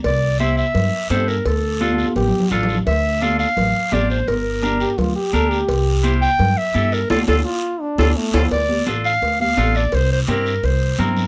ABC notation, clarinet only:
X:1
M:4/4
L:1/8
Q:1/4=170
K:Dm
V:1 name="Clarinet"
d2 e e3 c B | A4 z4 | e2 f f3 d c | B4 z4 |
z3 g2 e2 B | A A z3 A z A | d2 z f2 f2 d | c c B2 c2 z2 |]